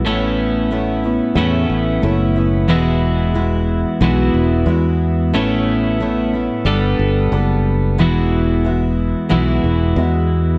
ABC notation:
X:1
M:4/4
L:1/8
Q:1/4=91
K:E
V:1 name="Clean electric guitar"
[A,,A,B,CE]4 [A,,A,B,CE]4 | [E,,E,G,B,EF]4 [E,,E,G,B,EF]4 | [A,,A,B,CE]4 [=G,B,=DA]4 | [E,,E,G,B,EF]4 [E,,E,G,B,EF]4 |]
V:2 name="Steel-string acoustic guitar"
[A,,A,B,CE]2 [A,B,CE] [B,CE] [A,,A,B,CE]2 [A,B,CE] [B,CE] | [E,,E,G,B,EF]2 [G,B,EF]2 [E,,E,G,B,EF]2 [G,B,EF]2 | [A,,A,B,CE]2 [A,B,CE] [B,CE] [=G,B,=DA]2 [G,B,DA]2 | [E,,E,G,B,EF]2 [G,B,EF]2 [E,,E,G,B,EF]2 [G,B,EF]2 |]
V:3 name="Fingered electric bass" clef=bass
A,,,4 E,, A,,, F,,,2 | E,,,4 B,,, E,,, E,,2 | A,,,4 =G,,, G,,, F,,,2 | E,,,4 B,,, E,,, E,,2 |]